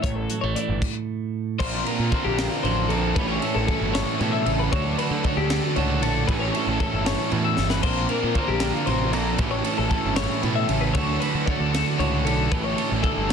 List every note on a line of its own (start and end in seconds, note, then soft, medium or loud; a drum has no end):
0.02 0.25 A1 loud
0.02 1.60 A2 medium
0.02 0.16 C#5 medium
0.02 kick loud
0.02 closed hi-hat medium
0.16 0.41 A4 medium
0.30 0.44 F#3 medium
0.30 closed hi-hat medium
0.41 0.54 A1 medium
0.41 0.82 A3 medium
0.41 0.55 C#5 medium
0.55 0.79 E3 medium
0.55 0.82 D5 medium
0.55 closed hi-hat medium
0.69 0.80 G1 medium
0.82 kick medium
0.82 crash medium
1.59 1.82 A#1 loud
1.59 2.12 A#2 medium
1.59 2.13 A#2 medium
1.59 2.12 D3 medium
1.59 1.87 F3 loud
1.59 1.86 A#3 medium
1.59 2.13 C4 medium
1.59 1.86 D4 medium
1.59 1.87 D4 medium
1.59 1.84 A#4 loud
1.59 1.85 C5 loud
1.59 kick loud
1.59 crash loud
1.85 2.10 F3 medium
1.85 2.11 A#3 medium
1.85 2.12 D4 medium
1.85 2.65 F4 medium
1.85 2.12 A#4 medium
1.85 2.13 A#4 medium
1.85 ride medium
1.99 2.10 A#2 medium
2.11 3.17 D3 medium
2.11 2.39 F3 medium
2.11 2.38 A#3 medium
2.11 2.91 C4 medium
2.11 2.38 D4 medium
2.11 2.36 A#4 medium
2.11 2.25 C5 medium
2.11 kick medium
2.11 ride medium
2.25 2.47 A#1 medium
2.25 2.50 G4 medium
2.37 2.63 F3 medium
2.37 2.64 A#3 medium
2.37 2.64 D4 medium
2.37 2.65 A#4 medium
2.37 snare loud
2.37 ride loud
2.50 2.64 F4 medium
2.63 2.91 A1 medium
2.63 3.14 F2 medium
2.63 2.91 F3 medium
2.63 2.91 A#3 medium
2.63 2.90 D4 medium
2.63 3.17 D4 medium
2.63 2.89 A#4 medium
2.63 2.90 C5 medium
2.63 ride medium
2.89 3.12 A#1 medium
2.89 3.16 F3 medium
2.89 3.16 A#3 medium
2.89 3.14 C4 medium
2.89 3.15 D4 medium
2.89 3.16 A4 medium
2.89 3.15 A#4 medium
2.89 ride medium
3.15 3.38 A1 loud
3.15 3.68 A2 medium
3.15 3.94 A2 medium
3.15 4.72 E3 medium
3.15 3.43 G3 loud
3.15 3.43 C#4 medium
3.15 3.70 C#4 medium
3.15 3.42 E4 medium
3.15 3.41 A4 loud
3.15 3.28 B4 loud
3.15 kick loud
3.15 ride loud
3.20 3.44 G4 medium
3.28 3.55 C#5 medium
3.42 3.66 G3 medium
3.42 3.68 C#4 medium
3.42 3.69 E4 medium
3.42 3.70 A4 medium
3.42 4.75 A4 medium
3.42 ride medium
3.55 3.66 A1 medium
3.55 3.66 A4 medium
3.67 4.76 E3 medium
3.67 3.95 G3 medium
3.67 3.96 C#4 medium
3.67 4.76 C#4 medium
3.67 3.95 E4 medium
3.67 3.94 A4 medium
3.67 kick medium
3.67 ride medium
3.81 4.03 G1 medium
3.93 4.21 A2 medium
3.93 4.19 G3 medium
3.93 4.21 C#4 medium
3.93 4.21 E4 medium
3.93 4.22 A4 medium
3.93 4.19 C#5 medium
3.93 snare loud
3.93 ride medium
4.19 4.42 A2 medium
4.19 4.47 B2 medium
4.19 4.48 G3 medium
4.19 4.48 C#4 medium
4.19 4.47 E4 medium
4.19 4.46 A4 medium
4.19 4.32 B4 medium
4.19 ride medium
4.32 4.59 E5 medium
4.46 4.68 A1 medium
4.46 4.73 C#3 medium
4.46 4.72 G3 medium
4.46 4.73 C#4 medium
4.46 4.74 E4 medium
4.46 4.75 A4 medium
4.46 ride medium
4.59 4.72 B4 medium
4.72 6.28 D2 medium
4.72 4.94 D2 loud
4.72 5.25 D3 medium
4.72 6.29 F#3 medium
4.72 5.24 A3 loud
4.72 5.00 D4 medium
4.72 4.98 E4 medium
4.72 5.00 F#4 medium
4.72 4.98 A4 loud
4.72 4.98 C#5 loud
4.72 kick loud
4.72 ride medium
4.98 5.12 D4 medium
4.98 5.24 D4 medium
4.98 5.26 F#4 medium
4.98 5.27 A4 medium
4.98 5.24 B4 medium
4.98 ride medium
5.11 5.22 D3 medium
5.11 5.76 E4 medium
5.24 6.29 D3 medium
5.24 5.76 A3 medium
5.24 5.52 D4 medium
5.24 5.51 F#4 medium
5.24 5.50 A4 medium
5.24 5.37 C#5 medium
5.24 kick medium
5.24 ride medium
5.37 5.59 D2 medium
5.37 5.63 G4 medium
5.50 5.76 D4 medium
5.50 5.77 F#4 medium
5.50 5.78 A4 medium
5.50 snare loud
5.50 ride loud
5.63 5.76 F#4 medium
5.76 6.02 C#2 medium
5.76 6.27 A2 medium
5.76 6.29 A3 medium
5.76 6.04 D4 medium
5.76 5.90 D4 medium
5.76 6.03 F#4 medium
5.76 6.02 A4 medium
5.76 6.02 C#5 medium
5.76 ride medium
5.90 6.29 E4 soft
6.02 6.24 A#1 medium
6.02 6.26 C#4 medium
6.02 6.28 D4 medium
6.02 6.28 F#4 medium
6.02 6.28 A4 medium
6.02 6.31 A4 medium
6.02 ride medium
6.28 6.50 A1 loud
6.28 6.80 A2 medium
6.28 7.32 A2 medium
6.28 6.80 E3 medium
6.28 6.56 G3 medium
6.28 6.55 C#4 medium
6.28 6.81 C#4 medium
6.28 6.54 E4 loud
6.28 6.55 G4 medium
6.28 6.54 A4 medium
6.28 6.40 B4 loud
6.28 kick loud
6.28 ride loud
6.40 6.67 C#5 medium
6.54 6.79 G3 medium
6.54 6.80 C#4 medium
6.54 6.81 E4 medium
6.54 6.82 A4 medium
6.54 7.33 A4 medium
6.54 ride medium
6.67 6.78 A1 medium
6.67 6.79 A4 medium
6.80 7.81 E3 medium
6.80 7.08 G3 medium
6.80 7.07 C#4 medium
6.80 7.57 C#4 medium
6.80 7.06 E4 medium
6.80 7.06 A4 medium
6.80 kick medium
6.80 ride medium
6.93 7.14 G1 medium
7.06 7.31 G3 medium
7.06 7.32 C#4 medium
7.06 7.33 E4 medium
7.06 7.34 A4 medium
7.06 7.32 C#5 medium
7.06 snare loud
7.06 ride loud
7.32 7.81 E2 medium
7.32 7.54 A2 medium
7.32 7.59 G3 medium
7.32 7.59 C#4 medium
7.32 7.57 E4 medium
7.32 7.82 F#4 medium
7.32 7.57 A4 medium
7.32 7.44 B4 medium
7.32 ride medium
7.45 7.70 E5 medium
7.57 7.79 G1 medium
7.57 7.84 G3 medium
7.57 7.81 C#4 medium
7.57 7.83 C#4 medium
7.57 7.83 E4 medium
7.57 7.86 A4 medium
7.57 snare medium
7.70 7.83 B4 medium
7.70 snare loud
7.83 8.05 A#1 medium
7.83 8.36 A#2 medium
7.83 8.36 D3 medium
7.83 8.11 F3 medium
7.83 8.10 A#3 loud
7.83 8.35 C4 medium
7.83 8.10 D4 loud
7.83 8.09 A#4 medium
7.83 8.09 C5 loud
7.83 kick loud
7.83 crash loud
7.87 8.09 D4 medium
8.09 8.35 F3 medium
8.09 8.35 A#3 medium
8.09 8.23 D4 medium
8.09 8.36 D4 medium
8.09 8.35 A#4 medium
8.09 8.37 A#4 medium
8.09 ride medium
8.23 8.34 A#2 medium
8.23 9.40 F4 soft
8.35 8.59 D3 medium
8.35 8.63 F3 medium
8.35 8.62 A#3 medium
8.35 9.37 C4 medium
8.35 8.61 D4 medium
8.35 8.60 A#4 medium
8.35 8.48 C5 medium
8.35 kick medium
8.35 ride medium
8.48 8.70 A#1 medium
8.48 8.73 G4 medium
8.60 8.87 D3 medium
8.60 8.86 F3 medium
8.60 8.87 A#3 medium
8.60 8.87 D4 medium
8.60 8.88 A#4 medium
8.60 snare loud
8.60 ride loud
8.73 8.87 F4 medium
8.86 9.13 A1 medium
8.86 9.13 C3 medium
8.86 9.14 F3 medium
8.86 9.14 A#3 medium
8.86 9.13 D4 medium
8.86 9.12 A#4 medium
8.86 9.12 C5 medium
8.86 ride medium
9.12 9.35 A#1 medium
9.12 9.39 A#2 medium
9.12 9.39 F3 medium
9.12 9.39 A#3 medium
9.12 9.38 D4 medium
9.12 9.38 A4 medium
9.12 9.38 A#4 medium
9.12 ride medium
9.38 9.61 A1 loud
9.38 9.91 A2 medium
9.38 10.16 A2 medium
9.38 10.94 E3 loud
9.38 9.66 G3 medium
9.38 9.91 C#4 medium
9.38 9.66 C#4 medium
9.38 9.65 E4 medium
9.38 9.65 G4 medium
9.38 9.64 A4 loud
9.38 9.51 B4 medium
9.38 kick loud
9.38 ride loud
9.51 9.78 C#5 medium
9.64 9.88 G3 medium
9.64 9.90 C#4 medium
9.64 9.91 E4 medium
9.64 9.92 A4 medium
9.64 10.97 A4 medium
9.64 ride medium
9.78 9.89 A1 medium
9.78 9.89 A4 medium
9.90 10.98 E3 medium
9.90 10.17 G3 medium
9.90 10.17 C#4 medium
9.90 10.93 C#4 medium
9.90 10.17 E4 medium
9.90 10.16 A4 medium
9.90 10.15 A4 medium
9.90 kick medium
9.90 ride medium
10.05 10.26 G1 medium
10.16 10.43 A2 medium
10.16 10.41 G3 medium
10.16 10.42 C#4 medium
10.16 10.44 E4 medium
10.16 10.44 A4 medium
10.16 10.42 C#5 medium
10.16 snare loud
10.16 ride loud
10.42 10.65 A2 medium
10.42 10.68 B2 medium
10.42 10.70 G3 medium
10.42 10.69 C#4 medium
10.42 10.69 E4 medium
10.42 10.67 A4 medium
10.42 10.55 B4 medium
10.42 ride medium
10.55 10.82 E5 medium
10.68 10.91 A1 medium
10.68 10.95 C#3 medium
10.68 10.95 G3 medium
10.68 10.94 C#4 medium
10.68 10.96 E4 medium
10.68 10.96 A4 medium
10.68 ride medium
10.81 10.95 B4 medium
10.94 12.51 D2 medium
10.94 11.17 D2 loud
10.94 11.47 D3 medium
10.94 12.51 F#3 medium
10.94 11.46 A3 medium
10.94 11.23 D4 loud
10.94 11.22 E4 medium
10.94 11.20 F#4 loud
10.94 11.20 A4 loud
10.94 11.21 C#5 loud
10.94 kick loud
10.94 ride loud
11.20 11.47 D4 medium
11.20 12.00 E4 medium
11.20 11.47 F#4 medium
11.20 11.48 A4 medium
11.20 11.46 B4 medium
11.20 ride medium
11.35 11.45 D3 medium
11.46 13.02 D3 medium
11.46 11.98 A3 medium
11.46 11.74 D4 medium
11.46 11.72 F#4 medium
11.46 11.71 A4 medium
11.46 11.60 C#5 medium
11.46 kick medium
11.46 ride medium
11.60 11.82 D2 medium
11.60 11.87 A4 medium
11.72 11.99 D4 medium
11.72 11.99 F#4 medium
11.72 12.01 A4 medium
11.72 snare loud
11.72 ride loud
11.87 12.00 F#4 medium
11.99 12.26 C#2 medium
11.99 12.50 A2 medium
11.99 12.52 A3 medium
11.99 12.27 D4 medium
11.99 12.49 E4 medium
11.99 12.25 F#4 medium
11.99 12.25 A4 medium
11.99 12.25 C#5 medium
11.99 ride medium
12.25 12.47 B1 medium
12.25 12.49 C#4 medium
12.25 12.52 D4 medium
12.25 12.50 F#4 medium
12.25 12.51 A4 medium
12.25 12.53 A4 medium
12.25 ride medium
12.51 12.73 A1 loud
12.51 13.03 A2 medium
12.51 13.04 A2 medium
12.51 13.03 E3 medium
12.51 12.78 G3 loud
12.51 13.33 A3 medium
12.51 12.77 C#4 medium
12.51 12.76 E4 loud
12.51 12.77 G4 medium
12.51 12.75 A4 loud
12.51 12.64 B4 loud
12.51 kick loud
12.51 ride medium
12.64 12.90 C#5 medium
12.76 13.01 G3 medium
12.76 13.02 C#4 medium
12.76 13.03 E4 medium
12.76 13.33 G4 medium
12.76 13.04 A4 medium
12.76 ride medium
12.90 13.02 A1 medium
12.90 13.02 A4 medium
13.03 13.33 D3 medium
13.03 13.30 G3 medium
13.03 13.29 C#4 medium
13.03 13.28 E4 medium
13.03 13.29 A4 medium
13.03 13.27 A4 medium
13.03 kick medium
13.03 ride medium
13.17 13.33 G1 medium
13.29 13.33 E4 medium
13.29 13.33 A4 medium
13.29 13.33 C#5 medium